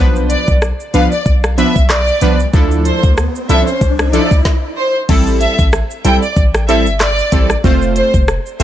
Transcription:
Already playing: synth stab F3
0.00 808-style bass B1, synth stab B3 D4 B4, riser
0.16 shaker
0.30 violin section D5, closed hi-hat, shaker
0.48 808-style bass B1, kick, shaker
0.62 cross-stick, shaker
0.80 shaker
0.94 808-style bass C2, synth stab F3 B3 D4 B4, violin section F5, closed hi-hat, shaker
1.12 violin section D5, shaker
1.26 808-style bass B1, kick, shaker
1.44 cross-stick, shaker
1.58 synth stab F3 B3 D4 B4, violin section E5, closed hi-hat, shaker
1.76 808-style bass B1, kick, shaker
1.90 violin section D5, cross-stick, clap, shaker
2.08 shaker
2.21 808-style bass C2, synth stab F3 B3 D4 B4, closed hi-hat, shaker
2.40 shaker
2.53 808-style bass D2, synth stab F3 D4 E4 A4, kick, shaker
2.71 shaker
2.85 violin section C5, closed hi-hat, shaker
3.03 808-style bass D2, kick, shaker
3.17 cross-stick, shaker
3.36 shaker
3.49 808-style bass C2, synth stab F3 D4 E4 A4, violin section E5, closed hi-hat, shaker
3.67 violin section C5, shaker
3.81 808-style bass C2, kick, shaker
3.99 cross-stick, shaker
4.13 synth stab F3 D4 E4 A4, violin section D5, closed hi-hat, shaker
4.31 808-style bass D2, kick, shaker
4.45 kick, snare
4.77 violin section C5
5.09 808-style bass A1, synth stab G3 C4 E4 A4, kick, crash, shaker
5.27 shaker
5.41 violin section E5, closed hi-hat, shaker
5.59 808-style bass A1, kick, shaker
5.73 cross-stick, shaker
5.91 shaker
6.04 808-style bass B1, synth stab G3 C4 E4 A4, violin section G5, closed hi-hat, shaker
6.22 violin section D5, shaker
6.36 808-style bass A1, kick, shaker
6.54 cross-stick, shaker
6.68 synth stab G3 C4 E4 A4, violin section E5, closed hi-hat, shaker
6.86 808-style bass G1, shaker
7.00 violin section D5, cross-stick, clap, shaker
7.18 shaker
7.32 808-style bass A1, synth stab G3 C4 E4 A4, kick, closed hi-hat, shaker
7.50 cross-stick, shaker
7.64 808-style bass F1, synth stab A3 C4 F4 C5, kick, shaker
7.82 shaker
7.96 violin section C5, closed hi-hat, shaker
8.14 808-style bass F1, kick, shaker
8.28 cross-stick, shaker
8.46 shaker
8.60 808-style bass E1, synth stab A3 C4 F4, violin section E5, closed hi-hat, shaker

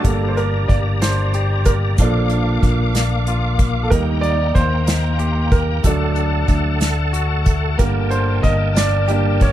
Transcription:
Already playing: clean electric guitar D4 F#4
0.03 fingered electric bass G1, grand piano G3 A#3 D4 A4, clean electric guitar A#3, tonewheel organ G4 D5 A#5, kick, closed hi-hat
0.28 grand piano C5
0.37 clean electric guitar D4, grand piano A#4, closed hi-hat
0.68 fingered electric bass G1, clean electric guitar A#3, grand piano D5, kick, closed hi-hat
1.02 clean electric guitar D4, grand piano C5, snare, closed hi-hat
1.34 clean electric guitar G4, closed hi-hat
1.65 clean electric guitar A#3, grand piano A#4, kick, closed hi-hat
1.98 fingered electric bass A#1, clean electric guitar F3, grand piano F3 A#3 D4 A4, tonewheel organ A#3 F5 D6, kick, closed hi-hat
2.30 clean electric guitar D4, closed hi-hat
2.62 fingered electric bass A#1, clean electric guitar A#3, kick, closed hi-hat
2.95 clean electric guitar D4, snare, closed hi-hat
3.27 clean electric guitar F4, closed hi-hat
3.59 clean electric guitar A#3, kick, closed hi-hat
3.83 grand piano A4
3.90 fingered electric bass D#2, clean electric guitar D#3, grand piano G3 A#3 D#4 A#4, tonewheel organ G5 A#5, kick, closed hi-hat
4.21 clean electric guitar D#4, grand piano D5, closed hi-hat
4.55 fingered electric bass D#2, clean electric guitar A#3, grand piano C5, kick, closed hi-hat
4.87 clean electric guitar D#4, snare, closed hi-hat
5.19 clean electric guitar G4, closed hi-hat
5.51 clean electric guitar A#3, grand piano A#4, kick, closed hi-hat
5.84 fingered electric bass D2, grand piano F#3 A3 D4 A4, clean electric guitar A3, tonewheel organ A4 F#5 A5, kick, closed hi-hat
6.16 clean electric guitar D4, closed hi-hat
6.48 fingered electric bass D2, clean electric guitar A3, kick, closed hi-hat
6.81 clean electric guitar D4, snare, closed hi-hat
7.13 clean electric guitar F#4, closed hi-hat
7.45 clean electric guitar A3, kick, closed hi-hat
7.78 fingered electric bass G1, grand piano D3 G3 A#3 A#4, clean electric guitar A#3, tonewheel organ A#4 G5, kick, closed hi-hat
8.10 clean electric guitar D4, grand piano C5, closed hi-hat
8.42 fingered electric bass G1, clean electric guitar A#3, grand piano D#5, kick, closed hi-hat
8.75 clean electric guitar D4, grand piano D5, snare, closed hi-hat
9.08 grand piano G3 A#3 D4, clean electric guitar G4, closed hi-hat
9.40 clean electric guitar A#3, grand piano C#5, kick, closed hi-hat

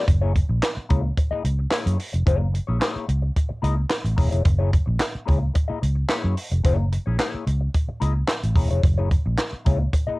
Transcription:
0.06 fingered electric bass F#1, muted clean electric guitar stroke, kick, closed hi-hat
0.21 clean electric guitar A#3 E4 G#4 C#5
0.36 muted clean electric guitar stroke, kick, closed hi-hat
0.49 fingered electric bass A#1, muted clean electric guitar stroke
0.63 snare, clap, closed hi-hat
0.76 muted clean electric guitar stroke, muted fingered electric bass stroke
0.89 fingered electric bass C#2, clean electric guitar A#3 E4 G#4 C#5, kick, closed hi-hat
1.04 muted clean electric guitar stroke
1.17 muted clean electric guitar stroke, kick, closed hi-hat
1.31 clean electric guitar A#3 E4 G#4 D#5, muted fingered electric bass stroke
1.45 fingered electric bass C#2, muted clean electric guitar stroke, closed hi-hat
1.59 muted clean electric guitar stroke
1.71 clean electric guitar A#3 E4 G#4 C#5, snare, clap, closed hi-hat
1.86 fingered electric bass F#2, closed hi-hat
1.99 muted clean electric guitar stroke, open hi-hat
2.13 fingered electric bass F1, muted clean electric guitar stroke, closed hi-hat
2.26 fingered electric bass F#1, clean electric guitar A#3 E4 G#4 C#5, kick, closed hi-hat
2.40 muted clean electric guitar stroke
2.53 muted clean electric guitar stroke, closed hi-hat
2.67 fingered electric bass A#1, clean electric guitar A#3 E4 G#4 C#5
2.79 clean electric guitar A3 D#4 G4 C5, snare, clap, closed hi-hat
2.90 clean electric guitar A#3 E4 G#4 C#5
2.96 muted fingered electric bass stroke
3.08 fingered electric bass C#2, muted clean electric guitar stroke, closed hi-hat
3.22 muted clean electric guitar stroke
3.36 kick, closed hi-hat
3.49 muted clean electric guitar stroke, muted fingered electric bass stroke
3.62 fingered electric bass C#2, clean electric guitar A#3 E4 G#4 D#5, closed hi-hat
3.77 muted clean electric guitar stroke
3.90 snare, clap, closed hi-hat
4.04 fingered electric bass A1, muted clean electric guitar stroke, closed hi-hat
4.16 fingered electric bass E1, clean electric guitar A#3 E4 G#4 C#5, kick, open hi-hat
4.31 fingered electric bass F1, clean electric guitar A#3 E4 G#4 C#5, closed hi-hat
4.44 fingered electric bass F#1, muted clean electric guitar stroke, kick, closed hi-hat
4.59 clean electric guitar A#3 E4 G#4 C#5
4.73 kick, closed hi-hat
4.86 fingered electric bass A#1, muted clean electric guitar stroke
4.99 muted clean electric guitar stroke, snare, clap, closed hi-hat
5.13 muted clean electric guitar stroke, muted fingered electric bass stroke
5.26 fingered electric bass C#2, clean electric guitar A#3 E4 G#4 C#5, kick, closed hi-hat
5.41 muted clean electric guitar stroke
5.54 muted clean electric guitar stroke, kick, closed hi-hat
5.68 clean electric guitar A#3 E4 G#4 D#5, muted fingered electric bass stroke
5.81 fingered electric bass C#2, muted clean electric guitar stroke, closed hi-hat
5.95 muted clean electric guitar stroke
6.09 clean electric guitar A#3 E4 G#4 C#5, snare, clap, closed hi-hat
6.24 fingered electric bass F#2
6.37 muted clean electric guitar stroke, open hi-hat
6.51 fingered electric bass F1, muted clean electric guitar stroke, closed hi-hat
6.64 fingered electric bass F#1, clean electric guitar A#3 E4 G#4 C#5, kick, closed hi-hat
6.79 muted clean electric guitar stroke
6.92 muted clean electric guitar stroke, closed hi-hat
7.06 fingered electric bass A#1, clean electric guitar A#3 E4 G#4 C#5
7.18 clean electric guitar A3 D#4 G4 C5, snare, clap, closed hi-hat
7.29 clean electric guitar A#3 E4 G#4 C#5
7.34 muted fingered electric bass stroke
7.47 fingered electric bass C#2, closed hi-hat
7.61 muted clean electric guitar stroke
7.74 kick, closed hi-hat
7.88 muted fingered electric bass stroke, muted clean electric guitar stroke
8.00 fingered electric bass C#2, clean electric guitar A#3 E4 G#4 D#5, closed hi-hat
8.15 muted clean electric guitar stroke
8.28 snare, clap, closed hi-hat
8.43 fingered electric bass A1, muted clean electric guitar stroke, closed hi-hat
8.56 fingered electric bass E1, clean electric guitar A#3 E4 G#4 C#5, kick, open hi-hat
8.71 fingered electric bass F1, clean electric guitar A#3 E4 G#4 C#5, closed hi-hat
8.84 fingered electric bass F#1, kick, closed hi-hat
8.98 clean electric guitar A#3 E4 G#4 C#5
9.11 kick, closed hi-hat
9.26 fingered electric bass A#1, muted clean electric guitar stroke
9.38 snare, clap, closed hi-hat
9.52 muted clean electric guitar stroke, muted fingered electric bass stroke
9.65 fingered electric bass C#2, clean electric guitar A#3 E4 G#4 C#5, kick, closed hi-hat
9.80 muted clean electric guitar stroke
9.93 muted clean electric guitar stroke, kick, closed hi-hat
10.07 clean electric guitar A#3 E4 G#4 D#5, muted fingered electric bass stroke

